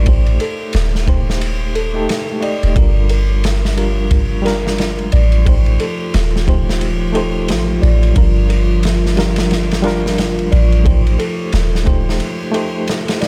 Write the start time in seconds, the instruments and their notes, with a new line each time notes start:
Already playing: 808-style bass A1
0.04 reed electric piano A3 D#4 G4, music box G4, kick, ride
0.09 reed electric piano C5
0.26 ride
0.40 music box A4, ride
0.73 808-style bass D#1, snare, ride
0.95 snare
1.06 reed electric piano A3 D#4 G4 C5, music box G4, kick, ride
1.30 snare
1.41 ride
1.75 music box A4, ride
1.94 reed electric piano A3 D#4 G4 A4
2.09 snare, ride
2.41 reed electric piano A3 D#4 G4 D#5, music box D5, ride
2.63 808-style bass D#1, ride
2.74 808-style bass G1, analog synth pad F3 F4, reed electric piano G3 D4 F4, music box G4, kick, ride
2.79 reed electric piano A#4
3.09 music box A#4, ride
3.44 snare, ride
3.65 snare
3.76 reed electric piano G3 D4 F4 A#4, music box G4, ride
4.11 kick, ride
4.42 reed electric piano G3 D4 F4, music box A#4, ride
4.47 reed electric piano A#4, snare
4.67 snare
4.78 snare, ride
4.99 ride
5.12 808-style bass A1, music box D5, ride
5.32 ride
5.45 reed electric piano A3 D#4 G4, music box G4, kick, ride
5.49 reed electric piano C5
5.66 ride
5.80 music box A4, ride
6.14 808-style bass D#1, snare, ride
6.36 snare
6.46 reed electric piano A3 D#4 G4 C5, music box G4, kick, ride
6.69 snare
6.81 ride
7.13 reed electric piano A3 D#4 G4, music box A4, ride
7.17 reed electric piano C5
7.48 808-style bass A1, snare, ride
7.82 808-style bass A1, music box D5, ride
8.03 ride
8.13 808-style bass G1, reed electric piano G3 D4 F4, music box G4, kick, ride
8.18 reed electric piano A#4
8.50 music box A#4, ride
8.83 snare, ride
9.06 snare
9.16 reed electric piano G3 D4 F4 A#4, music box G4, snare, ride
9.36 snare, ride
9.51 snare, ride
9.71 snare, ride
9.82 reed electric piano G3 D4 F4, music box A#4, ride
9.87 reed electric piano A#4, snare
10.06 snare
10.18 snare, ride
10.39 ride
10.52 808-style bass A1, music box D5, ride
10.72 ride
10.83 reed electric piano A3 D#4 G4, music box G4, kick, ride
10.87 reed electric piano C5
11.07 ride
11.19 music box A4, ride
11.52 808-style bass D#1, snare, ride
11.75 snare
11.85 reed electric piano A3 D#4 G4 C5, music box G4, kick, ride
12.09 snare
12.20 ride
12.52 reed electric piano A3 D#4 G4, music box A4, ride
12.56 reed electric piano C5
12.88 snare, ride
13.08 snare, ride
13.21 music box D5, snare, ride